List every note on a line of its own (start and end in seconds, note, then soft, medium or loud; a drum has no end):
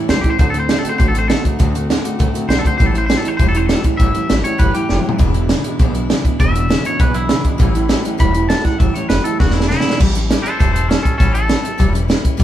0.08 0.22 C#2 medium
0.08 0.23 A2 medium
0.08 0.24 E3 medium
0.08 0.23 F#3 medium
0.08 0.24 G3 medium
0.08 0.23 C#4 medium
0.08 0.22 E4 medium
0.08 0.19 C5 medium
0.08 snare loud
0.08 closed hi-hat medium
0.21 0.38 A2 medium
0.21 0.38 E3 medium
0.21 0.39 C#4 soft
0.21 0.39 E4 soft
0.21 0.30 G4 medium
0.21 kick medium
0.21 closed hi-hat medium
0.25 0.38 G3 soft
0.30 0.38 C5 medium
0.39 0.71 D2 medium
0.39 0.54 D3 medium
0.39 0.53 D3 medium
0.39 0.54 A3 medium
0.39 0.53 A3 medium
0.39 0.54 C4 medium
0.39 0.53 F#4 medium
0.39 0.49 C5 medium
0.39 kick loud
0.39 closed hi-hat medium
0.50 0.59 A4 medium
0.54 0.68 D3 medium
0.54 0.68 A3 medium
0.54 0.68 A3 soft
0.54 0.69 C4 medium
0.54 0.69 F#4 medium
0.54 closed hi-hat medium
0.60 0.69 C5 medium
0.68 0.84 D3 medium
0.68 0.83 D3 medium
0.68 0.84 A3 medium
0.68 0.83 B3 medium
0.68 0.83 C4 medium
0.68 0.82 F#4 medium
0.68 0.79 C5 medium
0.68 snare loud
0.68 closed hi-hat medium
0.79 0.89 A4 medium
0.83 0.98 D3 medium
0.83 0.98 A3 medium
0.83 0.98 A3 soft
0.83 0.99 C4 medium
0.83 0.99 F#4 medium
0.83 muted upright bass stroke medium
0.83 closed hi-hat medium
0.89 0.97 C5 medium
0.98 1.31 A1 medium
0.98 1.14 D3 medium
0.98 1.13 D3 medium
0.98 1.14 A3 medium
0.98 1.13 A3 medium
0.98 1.14 C4 medium
0.98 1.13 F#4 medium
0.98 1.08 C5 medium
0.98 kick loud
0.98 closed hi-hat medium
1.08 1.18 A4 medium
1.14 1.28 D3 medium
1.14 1.28 A3 medium
1.14 1.28 A3 soft
1.14 1.29 C4 medium
1.14 1.29 F#4 medium
1.14 closed hi-hat medium
1.19 1.28 C5 medium
1.28 1.44 D3 medium
1.28 1.43 D3 medium
1.28 1.44 A3 medium
1.28 1.43 B3 medium
1.28 1.44 C4 medium
1.28 1.43 F#4 medium
1.28 1.43 A4 loud
1.28 snare loud
1.28 closed hi-hat medium
1.44 1.58 D3 medium
1.44 1.58 A3 medium
1.44 1.58 A3 soft
1.44 1.59 C4 medium
1.44 1.59 F#4 medium
1.44 kick medium
1.44 closed hi-hat medium
1.59 1.92 D2 medium
1.59 1.74 D3 medium
1.59 1.73 D3 medium
1.59 1.74 A3 medium
1.59 1.73 A3 medium
1.59 1.75 C4 medium
1.59 1.73 F#4 medium
1.59 kick loud
1.59 closed hi-hat medium
1.74 1.88 D3 medium
1.74 1.88 A3 medium
1.74 1.90 A3 soft
1.74 1.90 C4 medium
1.74 1.89 F#4 medium
1.74 closed hi-hat medium
1.89 2.03 D3 medium
1.89 2.05 D3 medium
1.89 2.05 A3 medium
1.89 2.03 B3 medium
1.89 2.04 C4 medium
1.89 2.03 F#4 medium
1.89 snare loud
1.89 closed hi-hat medium
2.04 2.18 D3 medium
2.04 2.18 A3 medium
2.04 2.19 C4 medium
2.04 2.19 F#4 medium
2.04 closed hi-hat medium
2.19 2.32 C2 medium
2.19 2.34 D3 medium
2.19 2.33 D3 medium
2.19 2.34 A3 medium
2.19 2.33 A3 loud
2.19 2.34 C4 medium
2.19 2.33 F#4 medium
2.19 kick loud
2.19 closed hi-hat medium
2.34 2.47 D3 medium
2.34 2.48 A3 medium
2.34 2.48 A3 soft
2.34 2.49 C4 medium
2.34 2.49 F#4 medium
2.34 closed hi-hat medium
2.48 2.62 B1 medium
2.48 2.64 D3 medium
2.48 2.63 D3 medium
2.48 2.65 A3 medium
2.48 2.63 B3 medium
2.48 2.64 C4 medium
2.48 2.62 F#4 medium
2.48 2.59 C5 loud
2.48 snare loud
2.48 closed hi-hat medium
2.59 2.67 A4 medium
2.63 2.78 D3 medium
2.63 2.78 A3 medium
2.63 2.79 A3 soft
2.63 2.80 C4 soft
2.63 2.79 F#4 medium
2.63 2.77 C5 loud
2.63 kick medium
2.63 closed hi-hat medium
2.78 3.12 A1 medium
2.78 2.92 A2 medium
2.78 2.94 A2 medium
2.78 2.93 E3 medium
2.78 2.95 E3 medium
2.78 2.95 G3 medium
2.78 2.94 C#4 medium
2.78 2.93 E4 medium
2.78 2.86 C5 medium
2.78 kick loud
2.78 closed hi-hat medium
2.86 2.97 A4 medium
2.93 3.07 A2 medium
2.93 3.08 E3 medium
2.93 3.09 G3 soft
2.93 3.10 C#4 soft
2.93 3.09 E4 medium
2.93 closed hi-hat medium
2.98 3.05 C5 medium
3.06 3.23 A2 medium
3.06 3.24 E3 medium
3.06 3.23 F#3 medium
3.06 3.25 G3 medium
3.06 3.17 C5 medium
3.06 snare loud
3.06 closed hi-hat medium
3.11 3.24 C#4 medium
3.11 3.23 E4 medium
3.17 3.28 A4 medium
3.24 3.38 A2 medium
3.24 3.38 E3 medium
3.24 3.39 G3 soft
3.24 3.39 C#4 soft
3.24 3.39 E4 medium
3.24 closed hi-hat medium
3.28 3.36 C5 medium
3.37 3.71 E1 medium
3.37 3.54 A2 medium
3.37 3.52 A2 medium
3.37 3.55 E3 medium
3.37 3.53 E3 medium
3.37 3.55 G3 medium
3.37 3.55 C#4 medium
3.37 3.53 E4 medium
3.37 3.48 C5 loud
3.37 kick loud
3.37 closed hi-hat medium
3.48 3.57 A4 medium
3.54 3.68 A2 medium
3.54 3.68 E3 medium
3.54 3.68 G3 soft
3.54 3.69 C#4 soft
3.54 3.69 E4 medium
3.54 3.66 C5 medium
3.54 closed hi-hat medium
3.66 3.82 A2 medium
3.66 3.84 E3 medium
3.66 3.83 F#3 medium
3.66 3.84 G3 medium
3.66 3.82 A4 medium
3.66 snare loud
3.66 closed hi-hat medium
3.70 3.83 C#4 medium
3.70 3.83 E4 medium
3.83 3.97 A2 medium
3.83 3.97 E3 medium
3.83 3.99 G3 soft
3.83 3.99 C#4 soft
3.83 3.99 E4 soft
3.83 kick medium
3.83 closed hi-hat medium
3.97 4.10 A1 medium
3.97 4.12 A2 medium
3.97 4.15 A2 medium
3.97 4.13 E3 loud
3.97 4.15 E3 medium
3.97 4.15 G3 medium
3.97 4.14 C#4 medium
3.97 4.13 E4 medium
3.97 4.42 E5 loud
3.97 kick loud
3.97 closed hi-hat medium
4.14 4.28 A2 medium
4.14 4.28 E3 medium
4.14 4.29 G3 soft
4.14 4.29 C#4 soft
4.14 4.29 E4 medium
4.14 closed hi-hat medium
4.29 4.42 A1 medium
4.29 4.42 A2 medium
4.29 4.44 E3 medium
4.29 4.43 F#3 medium
4.29 4.45 G3 medium
4.29 4.44 C#4 medium
4.29 4.43 E4 medium
4.29 snare loud
4.29 closed hi-hat medium
4.44 4.58 A2 medium
4.44 4.58 E3 medium
4.44 4.58 G3 soft
4.44 4.58 C#4 medium
4.44 4.59 E4 medium
4.44 4.59 C#5 medium
4.44 muted upright bass stroke medium
4.44 closed hi-hat medium
4.58 4.72 G1 medium
4.58 4.74 A2 medium
4.58 4.73 A2 medium
4.58 4.74 E3 medium
4.58 4.73 E3 medium
4.58 4.75 G3 medium
4.58 4.74 C#4 medium
4.58 4.74 E4 medium
4.58 4.74 B4 medium
4.58 kick loud
4.58 closed hi-hat medium
4.74 4.88 A2 medium
4.74 4.88 E3 medium
4.74 4.88 G3 soft
4.74 4.90 C#4 medium
4.74 4.90 E4 medium
4.74 5.18 G4 loud
4.74 muted upright bass stroke medium
4.74 closed hi-hat medium
4.89 5.02 F#1 medium
4.89 5.03 A2 medium
4.89 5.04 E3 medium
4.89 5.04 F#3 medium
4.89 5.05 G3 medium
4.89 5.04 C#4 medium
4.89 5.03 E4 medium
4.89 snare medium
4.99 mid tom medium
5.04 5.18 A2 medium
5.04 5.19 E3 medium
5.04 5.20 G3 soft
5.04 5.20 C#4 soft
5.04 5.19 E4 medium
5.09 floor tom medium
5.18 5.51 E1 medium
5.18 5.34 E2 medium
5.18 5.33 E2 medium
5.18 5.34 B2 medium
5.18 5.33 B2 medium
5.18 5.35 E3 medium
5.18 5.35 G#3 medium
5.18 5.34 D4 medium
5.18 5.33 E4 loud
5.18 kick loud
5.18 closed hi-hat medium
5.34 5.48 E2 medium
5.34 5.48 B2 medium
5.34 5.48 E3 soft
5.34 5.49 G#3 soft
5.34 5.50 D4 medium
5.34 5.49 E4 medium
5.34 closed hi-hat medium
5.49 5.63 E2 medium
5.49 5.63 C#3 medium
5.49 5.64 E3 medium
5.49 5.65 G#3 medium
5.49 5.65 D4 medium
5.49 5.63 E4 medium
5.49 snare loud
5.49 closed hi-hat medium
5.64 5.78 E2 medium
5.64 5.78 B2 medium
5.64 5.79 E3 medium
5.64 5.80 G#3 medium
5.64 5.80 D4 medium
5.64 5.79 E4 medium
5.64 closed hi-hat medium
5.79 6.11 B1 medium
5.79 5.93 E2 medium
5.79 5.95 E2 medium
5.79 5.95 B2 medium
5.79 5.94 B2 medium
5.79 5.95 E3 medium
5.79 5.94 G#3 medium
5.79 5.94 D4 medium
5.79 5.93 E4 medium
5.79 kick loud
5.79 closed hi-hat medium
5.94 6.08 E2 medium
5.94 6.08 B2 medium
5.94 6.09 E3 medium
5.94 6.09 G#3 medium
5.94 6.10 D4 medium
5.94 6.09 E4 medium
5.94 closed hi-hat medium
6.10 6.23 E2 medium
6.10 6.23 C#3 medium
6.10 6.25 E3 medium
6.10 6.25 G#3 medium
6.10 6.24 D4 medium
6.10 6.24 E4 medium
6.10 snare loud
6.10 closed hi-hat medium
6.24 6.38 E2 medium
6.24 6.38 B2 medium
6.24 6.39 E3 soft
6.24 6.39 G#3 medium
6.24 6.40 D4 soft
6.24 6.40 E4 medium
6.24 muted upright bass stroke medium
6.24 kick medium
6.24 closed hi-hat medium
6.39 6.71 E1 medium
6.39 6.55 E2 medium
6.39 6.53 E2 medium
6.39 6.55 B2 medium
6.39 6.54 B2 loud
6.39 6.55 E3 medium
6.39 6.54 G#3 medium
6.39 6.53 D4 medium
6.39 6.52 E4 medium
6.39 6.84 E5 loud
6.39 kick loud
6.39 closed hi-hat medium
6.54 6.68 E2 medium
6.54 6.68 B2 medium
6.54 6.68 E3 soft
6.54 6.69 G#3 soft
6.54 6.69 D4 soft
6.54 6.69 E4 medium
6.54 closed hi-hat medium
6.69 6.83 E2 medium
6.69 6.83 C#3 medium
6.69 6.84 E3 medium
6.69 6.85 G#3 medium
6.69 6.84 D4 medium
6.69 6.83 E4 medium
6.69 snare loud
6.69 closed hi-hat medium
6.84 6.98 E2 medium
6.84 6.99 B2 medium
6.84 6.99 E3 soft
6.84 6.99 G#3 medium
6.84 7.00 D4 medium
6.84 7.00 E4 medium
6.84 7.00 C#5 medium
6.84 muted upright bass stroke medium
6.84 closed hi-hat medium
6.99 7.31 B1 medium
6.99 7.14 E2 medium
6.99 7.13 E2 medium
6.99 7.15 B2 medium
6.99 7.14 B2 medium
6.99 7.15 E3 medium
6.99 7.15 G#3 medium
6.99 7.15 D4 medium
6.99 7.13 E4 medium
6.99 7.15 B4 medium
6.99 kick loud
6.99 closed hi-hat medium
7.14 7.28 E2 medium
7.14 7.29 B2 medium
7.14 7.28 E3 soft
7.14 7.29 G#3 soft
7.14 7.29 D4 soft
7.14 8.02 E4 loud
7.14 7.30 E4 medium
7.14 closed hi-hat medium
7.29 7.43 E2 medium
7.29 7.43 C#3 medium
7.29 7.44 E3 medium
7.29 7.44 G#3 medium
7.29 7.44 D4 medium
7.29 7.42 E4 medium
7.29 snare loud
7.29 closed hi-hat medium
7.44 7.58 E2 medium
7.44 7.58 B2 medium
7.44 7.57 E3 soft
7.44 7.59 G#3 soft
7.44 7.59 D4 soft
7.44 7.58 E4 medium
7.44 kick medium
7.44 closed hi-hat medium
7.58 7.91 A1 medium
7.58 7.74 A2 medium
7.58 7.73 A2 medium
7.58 7.74 E3 loud
7.58 7.73 E3 loud
7.58 7.74 G3 medium
7.58 7.74 C#4 medium
7.58 7.72 E4 medium
7.58 kick loud
7.58 closed hi-hat medium
7.74 7.88 A2 medium
7.74 7.88 E3 medium
7.74 7.89 G3 soft
7.74 7.89 C#4 medium
7.74 7.89 E4 medium
7.74 closed hi-hat medium
7.88 8.03 A2 medium
7.88 8.04 E3 medium
7.88 8.03 F#3 medium
7.88 8.04 G3 medium
7.88 8.03 C#4 medium
7.88 8.02 E4 medium
7.88 snare loud
7.88 closed hi-hat medium
8.03 8.17 A2 medium
8.03 8.18 E3 medium
8.03 8.17 G3 medium
8.03 8.18 C#4 medium
8.03 8.18 E4 medium
8.03 muted upright bass stroke medium
8.03 closed hi-hat medium
8.18 8.51 E1 medium
8.18 8.34 A2 medium
8.18 8.33 A2 medium
8.18 8.34 E3 medium
8.18 8.33 E3 loud
8.18 8.34 G3 medium
8.18 8.34 C#4 medium
8.18 8.33 E4 medium
8.18 8.48 B5 loud
8.18 kick loud
8.18 closed hi-hat medium
8.34 8.48 A2 medium
8.34 8.48 E3 medium
8.34 8.49 G3 soft
8.34 8.50 C#4 soft
8.34 8.49 E4 medium
8.34 closed hi-hat medium
8.49 8.63 A2 medium
8.49 8.65 E3 medium
8.49 8.63 F#3 loud
8.49 8.65 G3 medium
8.49 8.64 C#4 medium
8.49 8.63 E4 medium
8.49 8.64 A5 medium
8.49 snare loud
8.49 closed hi-hat medium
8.64 8.78 A2 medium
8.64 8.78 E3 medium
8.64 8.80 G3 soft
8.64 8.80 C#4 soft
8.64 8.79 E4 medium
8.64 8.79 F#5 medium
8.64 kick medium
8.64 snare soft
8.64 closed hi-hat medium
8.79 8.93 G1 medium
8.79 8.93 A2 medium
8.79 8.95 A2 medium
8.79 8.93 E3 medium
8.79 8.95 E3 medium
8.79 8.95 G3 medium
8.79 8.94 C#4 medium
8.79 8.93 E4 medium
8.79 8.94 E5 medium
8.79 kick loud
8.79 closed hi-hat medium
8.94 9.08 A2 medium
8.94 9.09 E3 medium
8.94 9.09 G3 soft
8.94 9.09 C#4 soft
8.94 9.09 E4 medium
8.94 9.08 C#5 medium
8.94 muted upright bass stroke medium
8.94 closed hi-hat medium
9.09 9.22 F#1 medium
9.09 9.23 A2 medium
9.09 9.24 E3 medium
9.09 9.23 F#3 medium
9.09 9.25 G3 medium
9.09 9.24 C#4 medium
9.09 9.23 E4 medium
9.09 9.24 B4 medium
9.09 snare loud
9.09 closed hi-hat medium
9.24 9.38 A2 medium
9.24 9.38 E3 medium
9.24 9.41 G3 soft
9.24 9.40 C#4 medium
9.24 9.39 E4 medium
9.24 9.39 A4 medium
9.24 muted upright bass stroke medium
9.24 closed hi-hat medium
9.39 9.71 E1 medium
9.39 9.53 E2 medium
9.39 9.55 E2 medium
9.39 9.53 B2 medium
9.39 9.55 B2 medium
9.39 9.55 E3 medium
9.39 9.55 G#3 medium
9.39 9.55 D4 medium
9.39 9.54 E4 medium
9.39 9.53 F#4 medium
9.39 kick loud
9.39 snare medium
9.51 9.68 E2 medium
9.51 9.67 E4 medium
9.51 snare medium
9.55 9.68 B2 medium
9.55 9.69 E3 soft
9.55 9.70 G#3 soft
9.55 9.70 D4 soft
9.55 9.70 E4 medium
9.60 snare medium
9.68 9.83 E2 medium
9.68 9.83 C#3 loud
9.68 9.85 E3 medium
9.68 9.85 G#3 medium
9.68 9.85 D4 medium
9.68 9.98 E4 loud
9.68 snare medium
9.73 9.84 E4 medium
9.80 9.98 E2 medium
9.80 muted upright bass stroke medium
9.80 snare medium
9.85 9.98 B2 medium
9.85 9.99 E3 soft
9.85 10.01 G#3 soft
9.85 10.00 D4 soft
9.85 10.00 E4 medium
9.90 snare medium
10.00 10.31 A1 medium
10.00 10.15 A2 medium
10.00 10.15 E3 medium
10.00 10.15 G3 medium
10.00 10.15 C#4 medium
10.00 10.14 E4 medium
10.00 kick loud
10.00 crash loud
10.15 10.30 G3 soft
10.15 10.30 C#4 medium
10.15 10.30 E4 medium
10.15 closed hi-hat medium
10.30 10.45 E3 medium
10.30 10.45 G3 medium
10.30 10.44 C#4 medium
10.30 10.44 E4 medium
10.30 snare loud
10.30 closed hi-hat medium
10.42 10.60 C#4 soft
10.42 10.60 E4 medium
10.42 10.58 A4 medium
10.42 10.58 C5 loud
10.42 muted upright bass stroke medium
10.42 closed hi-hat medium
10.47 10.59 G3 soft
10.59 10.92 E1 medium
10.59 10.74 A2 medium
10.59 10.75 E3 medium
10.59 10.75 G3 medium
10.59 10.75 C#4 medium
10.59 10.73 E4 medium
10.59 10.72 A4 medium
10.59 10.72 C5 medium
10.59 kick loud
10.59 closed hi-hat medium
10.73 10.89 G3 soft
10.73 10.89 C#4 soft
10.73 10.89 E4 medium
10.73 10.87 A4 medium
10.73 10.89 C5 medium
10.73 closed hi-hat medium
10.88 11.04 E3 medium
10.88 11.05 G3 medium
10.88 11.01 C#4 medium
10.88 11.04 C#4 medium
10.88 11.03 E4 medium
10.88 11.02 A4 medium
10.88 snare loud
10.88 closed hi-hat medium
11.02 11.17 C#4 medium
11.02 11.20 C#4 soft
11.02 11.19 E4 medium
11.02 11.17 A4 medium
11.02 kick medium
11.02 closed hi-hat medium
11.07 11.19 G3 soft
11.18 11.52 A1 medium
11.18 11.35 A2 medium
11.18 11.35 E3 medium
11.18 11.35 G3 medium
11.18 11.33 C#4 medium
11.18 11.34 C#4 medium
11.18 11.33 E4 medium
11.18 11.33 A4 medium
11.18 kick loud
11.18 closed hi-hat medium
11.34 11.48 G3 soft
11.34 11.49 C#4 soft
11.34 11.49 E4 medium
11.34 11.93 A4 medium
11.34 closed hi-hat medium
11.48 11.64 E3 medium
11.48 11.64 G3 medium
11.48 11.63 C#4 medium
11.48 11.62 E4 medium
11.48 snare loud
11.48 closed hi-hat medium
11.63 11.78 G3 soft
11.63 11.78 C#4 soft
11.63 11.78 E4 medium
11.63 muted upright bass stroke medium
11.63 closed hi-hat medium
11.78 12.11 E1 medium
11.78 11.94 A2 medium
11.78 11.94 E3 medium
11.78 11.94 G3 medium
11.78 11.92 C#4 medium
11.78 11.91 E4 medium
11.78 kick loud
11.78 closed hi-hat medium
11.93 12.07 G3 medium
11.93 12.08 C#4 medium
11.93 12.09 E4 medium
11.93 closed hi-hat medium
12.08 12.24 E3 medium
12.08 12.24 G3 medium
12.08 12.23 C#4 medium
12.08 12.22 E4 medium
12.08 snare loud
12.08 closed hi-hat medium
12.24 12.36 G3 medium
12.24 12.37 C#4 medium
12.24 12.37 E4 medium
12.24 kick medium
12.24 closed hi-hat medium
12.37 12.44 A1 medium
12.37 12.44 A2 medium
12.37 12.44 E3 medium
12.37 12.44 G3 medium
12.37 12.44 C#4 medium
12.37 12.44 E4 loud
12.37 kick loud
12.37 closed hi-hat medium